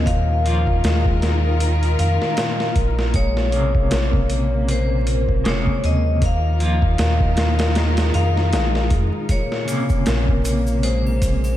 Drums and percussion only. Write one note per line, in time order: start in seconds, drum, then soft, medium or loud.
0.07 kick loud
0.07 closed hi-hat loud
0.46 closed hi-hat medium
0.67 kick medium
0.84 snare loud
0.84 closed hi-hat medium
1.06 kick loud
1.22 snare medium
1.22 closed hi-hat medium
1.60 closed hi-hat medium
1.83 closed hi-hat soft
1.99 closed hi-hat medium
2.22 snare soft
2.37 snare loud
2.37 closed hi-hat medium
2.60 snare medium
2.76 kick loud
2.76 closed hi-hat medium
2.99 snare medium
3.14 kick loud
3.14 closed hi-hat medium
3.37 snare soft
3.52 closed hi-hat medium
3.75 kick loud
3.91 snare loud
3.91 closed hi-hat medium
4.13 kick loud
4.30 closed hi-hat medium
4.68 closed hi-hat medium
5.07 closed hi-hat medium
5.29 kick medium
5.45 snare loud
5.45 closed hi-hat medium
5.67 kick medium
5.84 closed hi-hat medium
6.22 kick loud
6.22 closed hi-hat medium
6.60 closed hi-hat medium
6.82 kick loud
6.98 snare loud
6.98 closed hi-hat medium
7.21 kick loud
7.37 snare loud
7.37 closed hi-hat medium
7.59 snare loud
7.59 closed hi-hat medium
7.75 snare loud
7.75 closed hi-hat medium
7.97 snare loud
7.97 closed hi-hat medium
8.14 closed hi-hat medium
8.37 snare soft
8.53 snare loud
8.53 closed hi-hat medium
8.75 snare medium
8.90 kick loud
8.90 closed hi-hat medium
9.29 kick loud
9.29 closed hi-hat medium
9.29 maracas soft
9.52 snare soft
9.68 closed hi-hat medium
9.68 maracas loud
9.89 kick loud
9.89 maracas soft
10.06 snare loud
10.06 closed hi-hat medium
10.06 maracas soft
10.28 kick loud
10.45 closed hi-hat medium
10.45 maracas loud
10.67 maracas medium
10.83 closed hi-hat medium
10.83 maracas soft
11.07 triangle medium
11.22 kick medium
11.22 closed hi-hat medium
11.22 maracas medium
11.44 triangle medium
11.44 maracas medium